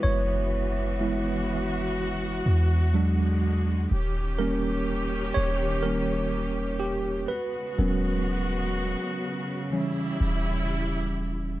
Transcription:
0.00 2.91 E3 medium
0.00 0.20 G#3 medium
0.00 0.20 B3 soft
0.00 2.90 B3 medium
0.00 0.20 E4 medium
0.00 3.87 F#4 medium
0.00 2.96 B4 medium
0.00 1.93 C#5 medium
0.04 2.42 F#1 loud
1.01 1.45 G#3 soft
1.01 1.45 B3 soft
1.01 1.45 E4 medium
2.46 3.87 E2 loud
2.94 3.90 D3 medium
2.94 3.87 F#3 medium
2.94 3.90 G#3 medium
2.94 3.87 G#3 medium
2.94 3.88 D4 medium
3.91 5.32 D#1 loud
3.91 7.26 D#3 medium
3.91 7.26 C#4 medium
3.91 7.26 G4 medium
4.39 5.04 G3 medium
4.39 5.04 A#3 medium
4.39 5.04 C#4 medium
4.39 5.39 A#4 loud
5.34 7.26 D#1 loud
5.34 5.57 C#5 loud
5.83 6.29 G3 soft
5.83 6.29 A#3 soft
5.83 6.29 C#4 medium
5.83 6.83 A#4 loud
6.80 7.30 G4 medium
7.28 11.60 C#3 medium
7.28 9.70 G#3 medium
7.28 9.70 B3 medium
7.28 9.69 F#4 medium
7.28 8.22 B4 medium
7.78 8.95 D#1 loud
7.78 9.68 F#3 medium
7.78 9.68 B3 medium
7.78 9.68 C#4 medium
7.78 9.68 A#4 medium
9.71 10.36 E3 soft
9.71 11.60 G3 medium
9.71 10.36 G3 medium
9.71 10.37 C#4 medium
9.71 11.60 E4 medium
10.21 11.60 D#1 loud

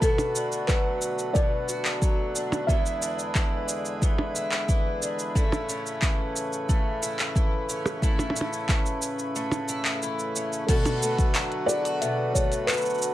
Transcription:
0.00 1.35 B2 medium
0.00 5.32 D3 medium
0.00 2.64 A3 medium
0.00 2.66 F#4 medium
0.00 1.68 F#4 medium
0.00 0.70 A4 medium
0.00 2.65 B4 medium
0.00 kick loud
0.00 shaker soft
0.18 percussion blips medium
0.18 shaker soft
0.35 2.35 D4 medium
0.35 shaker medium
0.52 shaker soft
0.67 2.01 F#3 medium
0.67 1.37 B4 medium
0.67 kick loud
0.67 clap medium
0.67 shaker soft
1.02 shaker medium
1.19 shaker soft
1.33 2.76 B2 medium
1.33 2.72 D5 medium
1.33 kick loud
1.33 shaker soft
1.69 2.69 F#4 medium
1.69 shaker medium
1.85 clap medium
1.85 shaker soft
2.02 2.76 F#3 medium
2.02 kick medium
2.02 shaker soft
2.35 3.02 D4 medium
2.35 shaker medium
2.52 percussion blips medium
2.52 shaker soft
2.67 4.01 E2 medium
2.67 5.33 G#3 medium
2.67 10.65 E4 medium
2.67 4.35 E4 medium
2.67 10.65 B4 medium
2.67 3.97 E5 medium
2.67 kick loud
2.67 shaker soft
2.86 shaker soft
3.02 5.01 D4 medium
3.02 shaker medium
3.19 shaker soft
3.35 4.68 E3 medium
3.35 kick loud
3.35 clap medium
3.35 shaker soft
3.69 shaker medium
3.85 shaker soft
4.02 5.36 E2 medium
4.02 kick medium
4.02 shaker soft
4.18 percussion blips medium
4.36 5.36 E4 medium
4.36 shaker medium
4.52 clap medium
4.52 shaker soft
4.69 6.02 E3 medium
4.69 kick loud
4.69 shaker soft
5.02 5.42 D4 medium
5.02 shaker medium
5.19 shaker soft
5.35 6.68 A2 medium
5.35 10.65 C#3 medium
5.35 10.65 A3 medium
5.35 7.01 E4 medium
5.35 kick medium
5.35 shaker soft
5.52 percussion blips medium
5.52 shaker soft
5.69 7.68 C#4 medium
5.69 shaker medium
5.86 shaker soft
6.02 7.35 E3 medium
6.02 kick medium
6.02 clap medium
6.02 shaker soft
6.36 shaker medium
6.53 shaker soft
6.69 8.02 A2 medium
6.69 kick medium
6.69 shaker soft
7.02 8.02 E4 medium
7.02 shaker medium
7.19 clap medium
7.19 shaker soft
7.36 8.68 E3 medium
7.36 kick medium
7.36 shaker soft
7.69 8.35 C#4 medium
7.69 shaker medium
7.86 percussion blips medium
7.86 shaker soft
8.02 9.35 A2 medium
8.02 9.68 E4 medium
8.02 kick loud
8.02 shaker soft
8.19 percussion blips medium
8.19 shaker soft
8.30 percussion blips soft
8.36 10.35 C#4 medium
8.36 shaker medium
8.41 percussion blips soft
8.53 shaker soft
8.69 10.02 E3 medium
8.69 kick loud
8.69 clap medium
8.69 shaker soft
8.86 shaker soft
9.02 shaker medium
9.19 shaker soft
9.36 10.69 A2 medium
9.36 shaker soft
9.52 percussion blips medium
9.52 shaker soft
9.69 10.69 E4 medium
9.69 shaker medium
9.85 clap medium
9.85 shaker soft
10.03 10.76 E3 medium
10.03 shaker soft
10.19 shaker soft
10.36 10.76 C#4 medium
10.36 shaker medium
10.53 shaker soft
10.66 12.01 B2 medium
10.66 13.14 D3 medium
10.66 13.14 A3 medium
10.66 13.14 F#4 medium
10.66 11.68 F#4 medium
10.66 11.64 A4 medium
10.66 11.00 A4 medium
10.66 13.14 B4 medium
10.66 kick loud
10.66 closed hi-hat medium
10.66 crash loud
10.66 shaker soft
10.85 closed hi-hat soft
10.85 percussion blips medium
10.85 shaker soft
11.02 12.34 A3 medium
11.02 shaker medium
11.18 kick medium
11.18 closed hi-hat soft
11.18 shaker soft
11.35 12.68 F#3 medium
11.35 clap loud
11.35 closed hi-hat medium
11.35 shaker soft
11.52 closed hi-hat soft
11.66 11.85 E4 medium
11.66 12.00 G#4 medium
11.66 12.36 D5 loud
11.66 shaker medium
11.85 13.14 F#4 medium
11.85 closed hi-hat soft
11.85 shaker soft
12.01 13.14 B2 medium
12.01 12.21 E5 medium
12.01 closed hi-hat medium
12.01 shaker soft
12.33 13.14 A3 medium
12.33 12.69 C#5 medium
12.33 kick medium
12.33 shaker medium
12.52 closed hi-hat soft
12.52 shaker soft
12.67 13.14 F#3 medium
12.67 13.14 B4 loud
12.67 clap loud
12.67 closed hi-hat medium
12.67 shaker soft
12.73 shaker soft
12.77 shaker soft
12.81 shaker soft
12.86 shaker soft
12.90 shaker soft
12.94 shaker soft
12.98 shaker soft
13.02 shaker medium

